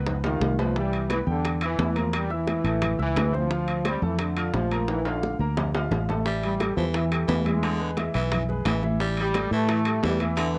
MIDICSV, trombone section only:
0, 0, Header, 1, 2, 480
1, 0, Start_track
1, 0, Key_signature, 0, "minor"
1, 0, Tempo, 343446
1, 1057, Time_signature, 4, 2, 24, 8
1, 14794, End_track
2, 0, Start_track
2, 0, Title_t, "Trombone section"
2, 0, Program_c, 0, 61
2, 358, Note_on_c, 0, 51, 91
2, 795, Note_off_c, 0, 51, 0
2, 848, Note_on_c, 0, 53, 83
2, 1057, Note_off_c, 0, 53, 0
2, 1077, Note_on_c, 0, 55, 95
2, 1516, Note_off_c, 0, 55, 0
2, 1572, Note_on_c, 0, 52, 84
2, 1673, Note_off_c, 0, 52, 0
2, 1814, Note_on_c, 0, 50, 90
2, 2246, Note_off_c, 0, 50, 0
2, 2308, Note_on_c, 0, 52, 97
2, 2734, Note_off_c, 0, 52, 0
2, 2785, Note_on_c, 0, 53, 83
2, 2988, Note_off_c, 0, 53, 0
2, 3011, Note_on_c, 0, 55, 93
2, 3237, Note_off_c, 0, 55, 0
2, 3257, Note_on_c, 0, 52, 95
2, 4145, Note_off_c, 0, 52, 0
2, 4220, Note_on_c, 0, 52, 102
2, 4650, Note_off_c, 0, 52, 0
2, 4701, Note_on_c, 0, 53, 86
2, 5353, Note_off_c, 0, 53, 0
2, 5413, Note_on_c, 0, 55, 99
2, 5622, Note_off_c, 0, 55, 0
2, 5641, Note_on_c, 0, 52, 88
2, 5872, Note_off_c, 0, 52, 0
2, 5873, Note_on_c, 0, 50, 75
2, 6348, Note_off_c, 0, 50, 0
2, 6355, Note_on_c, 0, 53, 91
2, 6795, Note_off_c, 0, 53, 0
2, 6857, Note_on_c, 0, 52, 93
2, 7064, Note_off_c, 0, 52, 0
2, 7099, Note_on_c, 0, 50, 81
2, 7559, Note_off_c, 0, 50, 0
2, 8997, Note_on_c, 0, 55, 94
2, 9434, Note_off_c, 0, 55, 0
2, 9446, Note_on_c, 0, 53, 88
2, 9556, Note_off_c, 0, 53, 0
2, 9709, Note_on_c, 0, 52, 84
2, 10372, Note_off_c, 0, 52, 0
2, 10407, Note_on_c, 0, 56, 99
2, 11315, Note_off_c, 0, 56, 0
2, 12862, Note_on_c, 0, 55, 114
2, 13286, Note_off_c, 0, 55, 0
2, 13314, Note_on_c, 0, 57, 114
2, 13975, Note_off_c, 0, 57, 0
2, 14031, Note_on_c, 0, 55, 101
2, 14247, Note_off_c, 0, 55, 0
2, 14270, Note_on_c, 0, 52, 88
2, 14794, Note_off_c, 0, 52, 0
2, 14794, End_track
0, 0, End_of_file